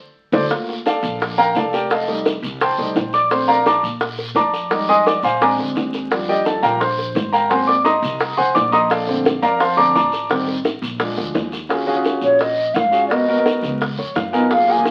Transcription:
0.32 D2 A4 C5 D5, low bongo, long guiro
0.50 A3 A#3 F4, high bongo, long guiro
0.69 high bongo
0.86 A4 D5 F5 A5, high bongo, short guiro
1.03 A#1, short guiro
1.20 high bongo, long guiro
1.38 A#4 F5 G5 A#5, high bongo
1.55 F1 A4 D5 F5 A5, high bongo, low bongo, short guiro
1.73 G4 A#4 D5 G5, high bongo, short guiro
1.90 A4 D#5 F5 A5, high bongo, long guiro
2.08 G3 A3 D#4, high bongo
2.25 high bongo, short guiro
2.42 C2, short guiro
2.61 C5 G5 A5 C6, high bongo, long guiro
2.78 C2 G3 A3 D#4, high bongo
2.95 A#1, high bongo, low bongo, short guiro
3.13 D5 D6, high bongo, short guiro
3.30 A3 C4 D4 C5 C6, high bongo, long guiro
3.48 A#4 D5 F5 A#5, high bongo
3.66 D5 A5 A#5 D6, high bongo, short guiro
3.83 A#2, short guiro
4.01 high bongo, long guiro
4.18 high bongo
4.35 F2 D5 A5 A#5 D6, high bongo, low bongo, short guiro
4.53 high bongo, short guiro
4.70 G3 G#3 D#4, high bongo, long guiro
4.89 D#5 G#5 C6 D#6, high bongo
5.06 D5 D6, high bongo, short guiro
5.23 A#1 C5 F5 G#5 C6, short guiro
5.41 G#3 C4 D4 D5 G#5 A#5 D6, high bongo, long guiro
5.57 D2, high bongo
5.75 D#2, high bongo, low bongo, short guiro
5.93 high bongo, short guiro
6.11 F3 G3 D4, high bongo, long guiro
6.29 G4 D5 D#5 G5, high bongo
6.45 A4 A5, high bongo, short guiro
6.62 A#1 F3 G3 D4 A#4 F5 G5 A#5, short guiro
6.80 C5 C6, high bongo, long guiro
6.99 high bongo
7.15 G#1, high bongo, low bongo, short guiro
7.33 A#4 F5 G5 A#5, high bongo, short guiro
7.49 F#3 A#3 C4 C5 F#5 G#5 C6, high bongo, long guiro
7.67 D5 D6, high bongo
7.85 D#5 A#5 C6 D#6, high bongo, short guiro
8.02 C2, short guiro
8.20 high bongo, long guiro
8.37 C2 C5 F#5 G#5 C6, high bongo
8.55 A#1 D5 D6, high bongo, low bongo, short guiro
8.72 D#5 A#5 C6 D#6, high bongo, short guiro
8.90 A4 D5 F5 A5, high bongo, long guiro
9.07 D3 A3 C4, high bongo
9.25 high bongo, short guiro
9.42 F2 A#4 D5 F5 A#5, short guiro
9.60 C5 F5 A5 C6, high bongo, long guiro
9.77 D3 A3 C4 D5 A5 A#5 D6, high bongo
9.95 A1 D5 A5 A#5 D6, high bongo, low bongo, short guiro
10.12 high bongo, short guiro
10.29 D#3 G3 C4, high bongo, long guiro
10.48 high bongo
10.65 high bongo, short guiro
10.82 A#1, short guiro
10.99 F3 G#3 D4, high bongo, long guiro
11.18 D2, high bongo
11.34 D#2, high bongo, low bongo, short guiro
11.52 high bongo, short guiro
11.69 C#4 F4 F#4 G#4, high bongo, long guiro
11.86 C#4 F4 F#4 G#4
11.95 C#4 F4 F#4 G#4
12.05 high bongo, short guiro
12.21 A#1 C#5, short guiro
12.39 D#5, high bongo, long guiro
12.74 G#1 F#5, high bongo, low bongo, short guiro
12.79 F5
12.91 C#4 F4 F#4 G#4, short guiro
13.07 B3 F#4 A#4 D#5, high bongo, long guiro
13.28 B3 F#4 A#4
13.37 B3 F#4 A#4
13.46 high bongo, short guiro
13.62 C#2, high bongo, short guiro
13.81 high bongo, long guiro
13.98 F2 C#5, high bongo
14.15 F#2 F5, high bongo, low bongo, short guiro
14.33 B3 D#4 F4 A#4 G#5, high bongo, short guiro
14.50 A#3 F4 G#4 F5, high bongo, long guiro
14.68 A#3 F4 G#4 G#5
14.77 F3 A#3 G#4
14.85 high bongo, short guiro

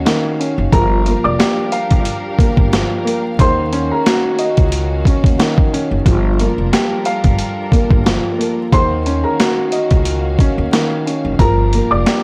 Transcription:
Already playing: D#3 A#3 C#4 F#4 D#5 F5
0.05 D#3, snare, closed hi-hat
0.40 C#4, closed hi-hat
0.58 F#1
0.72 G1 F3 G3 D4 G4 A#4 A#5, kick, closed hi-hat
1.06 A#3, closed hi-hat
1.24 F1 D5 D6
1.39 G4, snare, closed hi-hat
1.72 F5, closed hi-hat
1.91 G1, kick, closed hi-hat
2.05 closed hi-hat
2.39 A#3, kick, closed hi-hat
2.57 G1, kick
2.73 F3, snare, closed hi-hat
3.05 A#3, closed hi-hat
3.39 D#2 D#3 A#3 C#4 F#4 C5 C6, kick, closed hi-hat
3.73 C#4, closed hi-hat
3.92 A#4 A#5
4.06 F#4, snare, closed hi-hat
4.39 D#5, closed hi-hat
4.57 C#2, kick, closed hi-hat
4.72 closed hi-hat
5.05 C#4, kick, closed hi-hat
5.24 D#2, kick, closed hi-hat
5.39 D#3, snare, closed hi-hat
5.58 kick
5.73 C#4, closed hi-hat
5.91 F#1
6.05 G1 F3 G3 D4 F4 A4 A#4, kick, closed hi-hat
6.39 A#3, closed hi-hat
6.58 F1
6.73 G4, snare, closed hi-hat
7.05 F5, closed hi-hat
7.24 G1, kick, closed hi-hat
7.39 closed hi-hat
7.72 A#3, kick, closed hi-hat
7.91 G1, kick
8.06 F3, snare, closed hi-hat
8.38 A#3, closed hi-hat
8.72 D#2 D#3 A#3 C#4 F#4 C5 F5 C6, kick, closed hi-hat
9.06 C#4, closed hi-hat
9.24 A#4 A#5
9.40 F#4, snare, closed hi-hat
9.72 D#5, closed hi-hat
9.91 C#2, kick, closed hi-hat
10.05 closed hi-hat
10.39 C#4, kick, closed hi-hat
10.58 D#2
10.72 D#3, snare, closed hi-hat
11.06 C#4, closed hi-hat
11.25 F#1
11.39 G1 F3 G3 D4 G4 A#4 A#5, kick, closed hi-hat
11.73 A#3, closed hi-hat
11.91 F1 D5 D6
12.06 G4, snare, closed hi-hat

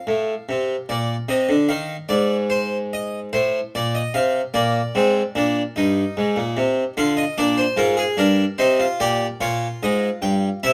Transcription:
Already playing: F5
0.07 A2
0.49 C3
0.89 A#2 D5
1.29 C3 D#5
1.49 D3
1.69 D#3 F5
2.09 G#2 D5
2.50 C5
2.93 D#5
3.33 A2 C5
3.75 A#2 D5
3.95 D#5
4.14 C3 F5
4.54 A#2 A#3 D5
4.95 G#2 C4
5.35 A#2 D4
5.76 G2 D#4
6.17 G#2
6.36 A#2
6.57 C3
6.97 D3 F4 F5
7.17 D#5
7.38 A#2 D4 D5
7.58 C5
7.77 G#2 F4 A#4
7.97 G#4
8.17 G2 D4 A#4
8.58 C3 D#4 C5
8.80 F4
9.00 A#2 G4 D5
9.41 A#2 F4 C#5
9.83 G#2 D#5
10.22 G2 G5
10.63 C3 E4 E5

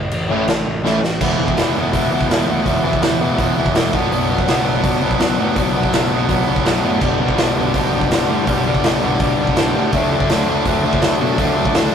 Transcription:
0.11 A1, crash
0.29 A1 A2 E3 A3 C#4 E4
0.48 A1, snare, crash
0.67 A1
0.84 A1 A2 E3 A3 C#4 E4, snare
1.04 A1, snare
1.21 E1 E2 B2 E3 G#3 B3 E4, kick, crash
1.39 E2 B2 E3 G#3 B3 E4
1.48 kick
1.57 E1 E2 B2 E3 G#3 B3 E4, snare, open hi-hat
1.74 E1 E2 B2 E3 G#3 B3 E4
1.92 E1 E2 B2 E3 G#3 B3 E4, kick, open hi-hat
2.10 E1 E2 B2 E3 G#3 B3 E4
2.21 kick
2.28 E1 E2 B2 E3 G#3 B3 E4, snare, open hi-hat
2.47 D2 E2 B2 E3 G#3 B3 E4
2.66 E1 E2 B2 E3 G#3 B3 E4, kick, open hi-hat
2.83 E2 B2 E3 G#3 B3 E4
2.93 kick
3.01 E1 E2 B2 E3 G#3 B3 E4, snare, open hi-hat
3.20 E1 E2 B2 E3 G#3 B3 E4
3.38 E1 E2 B2 E3 G#3 B3 E4, kick, open hi-hat
3.56 E1 E2 B2 E3 G#3 B3 E4
3.66 kick
3.74 E1 E2 B2 E3 G#3 B3 E4, snare, open hi-hat
3.93 B1 B2 F#3 B3 D4, kick
4.11 B1 B2 F#3 B3 D4, open hi-hat
4.30 B2 F#3 B3 D4
4.38 kick
4.47 B1 B2 F#3 B3 D4, snare, open hi-hat
4.65 B1 B2 F#3 B3 D4
4.82 B1 B2 F#3 B3 D4, kick, open hi-hat
5.01 B1 B2 F#3 B3 D4
5.11 kick
5.19 B1 B2 F#3 B3 D4, snare, open hi-hat
5.38 A2 B2 F#3 B3 D4
5.54 B1 B2 F#3 B3 D4, kick, open hi-hat
5.73 B2 F#3 B3 D4
5.83 kick
5.92 B1 B2 F#3 B3 D4, snare, open hi-hat
6.10 B1 B2 F#3 B3 D4
6.28 B1 B2 F#3 B3 D4, kick, open hi-hat
6.47 B1 B2 F#3 B3 D4
6.56 kick
6.65 B1 B2 F#3 B3 D4, snare, open hi-hat
6.83 A2 B2 F#3 B3 D4
7.01 B1 G2 B2 D3 G3 B3 D4, kick, crash
7.20 G2 B2 D3 G3 B3 D4
7.28 kick
7.37 B1 G2 B2 D3 G3 B3 D4, snare, open hi-hat
7.56 B1 G2 B2 D3 G3 B3 D4
7.74 B1 G2 B2 D3 G3 B3 D4, kick, open hi-hat
7.91 B1 G2 B2 D3 G3 B3 D4
8.01 kick
8.09 B1 G2 B2 D3 G3 B3 D4, snare, open hi-hat
8.27 G2 A2 B2 D3 G3 B3 D4
8.46 B1 G2 B2 D3 G3 B3 D4, kick, open hi-hat
8.65 G2 B2 D3 G3 B3 D4
8.75 kick
8.82 B1 G2 B2 D3 G3 B3 D4, snare, open hi-hat
9.01 B1 G2 B2 D3 G3 B3 D4
9.20 B1 G2 B2 D3 G3 B3 D4, kick, open hi-hat
9.39 B1 G2 B2 D3 G3 B3 D4
9.47 kick
9.56 B1 G2 B2 D3 G3 B3 D4, snare, open hi-hat
9.74 G2 A2 B2 D3 G3 B3 D4
9.92 D2 D3 F#3 A3 D4, kick, open hi-hat
10.11 D3 F#3 A3 D4
10.20 kick
10.29 D2 D3 F#3 A3 D4, snare, open hi-hat
10.48 D2 D3 F#3 A3 D4
10.65 D2 D3 F#3 A3 D4, kick, open hi-hat
10.83 D2 D3 F#3 A3 D4
10.93 kick
11.02 D2 D3 F#3 A3 D4, snare, open hi-hat
11.19 B2 D3 F#3 A3 D4
11.38 D2 D3 F#3 A3 D4, kick, open hi-hat
11.55 D3 F#3 A3 D4
11.65 kick
11.74 D2 D3 F#3 A3 D4, snare, open hi-hat

